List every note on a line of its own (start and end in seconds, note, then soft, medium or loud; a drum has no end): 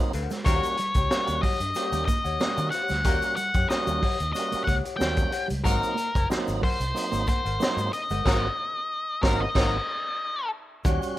0.00 0.12 F#3 medium
0.00 0.12 A#3 medium
0.00 0.12 C4 medium
0.00 0.12 D#4 medium
0.13 0.27 D2 loud
0.13 0.34 A#4 medium
0.13 0.32 C5 medium
0.13 0.31 F#5 medium
0.13 muted clean electric guitar stroke soft
0.13 closed hi-hat medium
0.13 shaker medium
0.30 0.42 G#3 medium
0.30 muted hollow-body jazz guitar stroke soft
0.30 snare soft
0.30 closed hi-hat soft
0.30 shaker medium
0.44 0.59 D#2 loud
0.44 0.59 D#3 medium
0.44 0.77 G3 medium
0.44 0.66 A#3 medium
0.44 0.78 A#3 medium
0.44 0.77 C#4 medium
0.44 0.78 F#4 medium
0.44 0.66 G4 loud
0.44 0.67 G4 medium
0.44 0.66 A#4 loud
0.44 1.46 C#5 medium
0.44 0.67 C#5 medium
0.44 0.67 F#5 medium
0.44 kick loud
0.44 closed hi-hat medium
0.44 shaker medium
0.63 muted clean electric guitar stroke soft
0.63 closed hi-hat medium
0.63 shaker medium
0.77 0.91 G3 medium
0.77 muted hollow-body jazz guitar stroke soft
0.77 closed hi-hat medium
0.77 shaker medium
0.94 1.07 C#2 loud
0.94 1.10 G4 medium
0.94 1.09 C#5 medium
0.94 1.09 G5 medium
0.94 kick medium
0.94 closed hi-hat medium
0.94 shaker medium
1.11 1.42 G3 medium
1.11 1.42 A#3 medium
1.11 1.42 C#4 medium
1.11 1.42 F#4 medium
1.11 muted fingered electric bass stroke soft
1.11 muted hollow-body jazz guitar stroke soft
1.11 snare loud
1.11 shaker medium
1.27 1.40 D#2 medium
1.27 closed hi-hat medium
1.27 shaker medium
1.41 1.56 F#3 medium
1.41 1.58 G4 medium
1.41 1.59 C#5 medium
1.41 2.04 D#5 loud
1.41 1.59 F#5 medium
1.41 kick medium
1.41 open hi-hat medium
1.60 1.72 G2 medium
1.60 muted hollow-body jazz guitar stroke soft
1.60 closed hi-hat medium
1.60 shaker medium
1.75 2.07 G3 medium
1.75 2.07 A#3 medium
1.75 2.07 C#4 medium
1.75 1.97 G4 medium
1.75 2.08 G4 medium
1.75 1.97 C#5 medium
1.75 1.97 F#5 medium
1.75 muted clean electric guitar stroke soft
1.75 closed hi-hat medium
1.75 shaker medium
1.92 2.04 D#2 medium
1.92 2.05 A#3 medium
1.92 closed hi-hat medium
1.92 shaker medium
2.05 2.21 A#3 medium
2.05 2.70 D#5 medium
2.05 muted hollow-body jazz guitar stroke soft
2.05 kick medium
2.05 closed hi-hat medium
2.05 shaker medium
2.24 2.37 D#2 medium
2.24 2.39 G4 medium
2.24 2.38 C#5 medium
2.24 2.38 F#5 medium
2.24 closed hi-hat soft
2.24 shaker soft
2.40 2.72 G3 medium
2.40 2.53 A#3 medium
2.40 2.72 A#3 medium
2.40 2.72 C#4 medium
2.40 2.72 F#4 medium
2.40 snare loud
2.40 shaker medium
2.57 2.69 D#3 loud
2.57 muted hollow-body jazz guitar stroke soft
2.57 closed hi-hat soft
2.57 shaker medium
2.71 2.94 G4 medium
2.71 2.90 C#5 medium
2.71 3.35 F#5 medium
2.71 closed hi-hat medium
2.71 shaker soft
2.75 2.89 F#5 medium
2.89 3.05 D2 medium
2.89 3.01 G3 medium
2.89 muted hollow-body jazz guitar stroke soft
2.89 snare soft
2.89 closed hi-hat soft
2.89 shaker medium
3.04 3.18 D#2 medium
3.04 3.18 D#3 medium
3.04 3.37 G3 medium
3.04 3.26 A#3 medium
3.04 3.37 A#3 medium
3.04 3.37 C#4 medium
3.04 3.37 F#4 medium
3.04 3.26 G4 loud
3.04 3.25 G4 medium
3.04 3.25 A#4 loud
3.04 3.25 C#5 medium
3.04 3.25 F#5 medium
3.04 kick loud
3.04 closed hi-hat medium
3.04 shaker medium
3.22 closed hi-hat soft
3.22 shaker medium
3.36 3.50 G3 medium
3.36 3.69 F#5 loud
3.36 muted hollow-body jazz guitar stroke soft
3.36 closed hi-hat medium
3.36 shaker medium
3.54 3.67 F#2 medium
3.54 3.69 G4 soft
3.54 3.69 C#5 medium
3.54 3.68 G5 medium
3.54 kick medium
3.54 closed hi-hat soft
3.54 shaker medium
3.69 4.02 G3 medium
3.69 4.02 A#3 medium
3.69 4.02 C#4 medium
3.69 4.02 F#4 loud
3.69 4.32 D#5 medium
3.69 muted clean electric guitar stroke soft
3.69 muted fingered electric bass stroke medium
3.69 snare loud
3.69 shaker medium
3.87 3.99 D#2 medium
3.87 3.99 G3 medium
3.87 closed hi-hat medium
3.87 shaker medium
4.02 4.15 F#3 medium
4.02 4.18 G4 medium
4.02 4.18 C#5 medium
4.02 4.18 F#5 medium
4.02 kick medium
4.02 open hi-hat medium
4.20 4.32 D#2 medium
4.20 closed hi-hat medium
4.20 shaker medium
4.33 4.67 G3 medium
4.33 4.67 A#3 medium
4.33 4.67 C#4 medium
4.33 4.67 F#4 medium
4.33 4.64 D#5 loud
4.33 muted clean electric guitar stroke soft
4.33 muted hollow-body jazz guitar stroke soft
4.33 closed hi-hat loud
4.33 shaker medium
4.52 4.63 A#3 medium
4.52 muted hollow-body jazz guitar stroke soft
4.52 muted fingered electric bass stroke medium
4.52 closed hi-hat medium
4.52 shaker medium
4.64 4.81 C#2 medium
4.64 4.80 A#3 medium
4.64 4.82 G4 medium
4.64 4.83 C#5 medium
4.64 4.74 F#5 loud
4.64 kick medium
4.64 shaker medium
4.68 4.83 F#5 medium
4.68 closed hi-hat medium
4.84 4.99 G4 medium
4.84 4.98 C#5 medium
4.84 4.98 F#5 medium
4.84 closed hi-hat soft
4.84 shaker soft
4.97 5.25 D#2 loud
4.97 5.32 F#3 medium
4.97 5.32 G3 medium
4.97 5.12 A#3 medium
4.97 5.32 A#3 medium
4.97 5.32 C#4 medium
4.97 5.45 G5 loud
5.01 snare loud
5.01 shaker medium
5.17 muted hollow-body jazz guitar stroke soft
5.17 kick medium
5.17 closed hi-hat medium
5.17 shaker medium
5.32 5.51 G4 medium
5.32 5.49 C#5 medium
5.32 5.48 F#5 loud
5.32 muted clean electric guitar stroke soft
5.32 closed hi-hat medium
5.32 shaker medium
5.48 5.62 C#2 loud
5.48 5.60 G3 medium
5.48 muted hollow-body jazz guitar stroke soft
5.48 closed hi-hat medium
5.48 shaker medium
5.64 5.79 G#1 medium
5.64 5.97 F#3 medium
5.64 5.77 G#3 medium
5.64 5.97 A#3 medium
5.64 5.97 C4 medium
5.64 5.86 D#4 loud
5.64 5.97 D#4 medium
5.64 5.85 F#4 medium
5.64 5.85 A#4 loud
5.64 6.26 A#4 medium
5.64 5.84 A#4 medium
5.64 5.84 C5 medium
5.64 5.84 F#5 medium
5.64 kick loud
5.64 closed hi-hat medium
5.64 shaker medium
5.83 closed hi-hat medium
5.83 shaker medium
5.95 6.09 A#3 medium
5.95 muted hollow-body jazz guitar stroke soft
5.95 closed hi-hat medium
5.95 shaker medium
6.15 6.27 F#1 medium
6.15 6.29 A#4 soft
6.15 6.29 C5 medium
6.15 6.28 G#5 medium
6.15 kick medium
6.15 closed hi-hat medium
6.15 shaker soft
6.30 6.62 F#3 medium
6.30 6.62 A#3 medium
6.30 6.62 C4 medium
6.30 6.62 D#4 loud
6.30 muted hollow-body jazz guitar stroke soft
6.30 muted fingered electric bass stroke soft
6.30 snare loud
6.30 shaker medium
6.48 6.59 G#1 medium
6.48 closed hi-hat soft
6.48 shaker medium
6.62 6.75 F#3 medium
6.62 6.78 A#4 medium
6.62 6.78 C5 medium
6.62 7.27 C5 loud
6.62 6.78 F#5 medium
6.62 kick medium
6.62 open hi-hat medium
6.80 6.92 C2 medium
6.80 muted hollow-body jazz guitar stroke medium
6.80 closed hi-hat medium
6.80 shaker medium
6.94 7.26 F#3 medium
6.94 7.26 A#3 medium
6.94 7.26 C4 medium
6.94 7.27 D#4 medium
6.94 muted clean electric guitar stroke soft
6.94 muted hollow-body jazz guitar stroke soft
6.94 closed hi-hat medium
6.94 shaker medium
7.12 7.24 G#1 medium
7.12 7.23 A#3 medium
7.12 muted hollow-body jazz guitar stroke soft
7.12 closed hi-hat medium
7.12 shaker medium
7.27 7.40 A#3 medium
7.27 7.42 A#4 medium
7.27 7.43 C5 medium
7.27 7.93 C5 loud
7.27 7.43 F#5 medium
7.27 kick medium
7.27 closed hi-hat medium
7.27 shaker medium
7.45 7.57 G#1 medium
7.45 7.59 A#4 medium
7.45 7.58 C5 medium
7.45 7.58 F#5 medium
7.45 closed hi-hat soft
7.45 shaker soft
7.60 7.92 F#3 medium
7.60 7.92 A#3 medium
7.60 7.73 A#3 medium
7.60 7.92 C4 medium
7.60 7.92 D#4 medium
7.60 muted hollow-body jazz guitar stroke soft
7.60 snare loud
7.60 shaker medium
7.77 7.89 G#2 loud
7.77 muted clean electric guitar stroke soft
7.77 muted hollow-body jazz guitar stroke soft
7.77 closed hi-hat medium
7.77 shaker medium
7.93 9.27 D#5 loud
7.93 closed hi-hat medium
7.93 shaker medium
8.10 8.22 G1 medium
8.10 8.22 G#3 medium
8.10 8.23 A#4 medium
8.10 8.24 C5 medium
8.10 8.25 F#5 medium
8.10 closed hi-hat medium
8.10 shaker medium
8.25 8.48 G#1 loud
8.25 8.48 F#3 loud
8.25 8.48 A#3 loud
8.25 8.48 C4 loud
8.25 8.42 D#4 medium
8.25 8.42 F#4 loud
8.25 8.48 F#4 loud
8.25 8.47 A#4 medium
8.25 8.42 A#4 loud
8.25 8.48 C5 medium
8.25 8.48 F#5 medium
8.25 kick loud
8.25 snare medium
8.25 crash medium
9.22 9.46 G#1 loud
9.22 9.45 F#3 loud
9.22 9.45 A#3 medium
9.22 9.46 C4 loud
9.22 9.40 D#4 medium
9.22 9.46 D#4 loud
9.22 9.40 F#4 medium
9.22 9.40 A#4 medium
9.22 9.45 A#4 loud
9.22 9.46 C5 loud
9.22 9.46 F#5 loud
9.22 kick loud
9.22 snare loud
9.40 10.49 D#5 medium
9.55 9.78 G#1 loud
9.55 9.78 F#3 medium
9.55 9.78 A#3 medium
9.55 9.77 C4 medium
9.55 9.78 D#4 loud
9.55 9.72 D#4 medium
9.55 9.72 F#4 loud
9.55 9.72 A#4 medium
9.55 9.78 A#4 medium
9.55 9.78 C5 medium
9.55 9.79 F#5 medium
9.55 kick loud
9.55 snare loud
9.55 crash medium
10.85 10.98 D#2 loud
10.85 10.98 D#3 medium
10.85 11.19 G3 medium
10.85 11.19 C#4 medium
10.85 11.19 F#4 medium
10.85 11.03 G4 medium
10.85 11.04 C#5 medium
10.85 11.04 F#5 medium
10.85 kick loud
10.85 closed hi-hat medium
10.85 shaker medium
11.03 closed hi-hat soft
11.03 shaker medium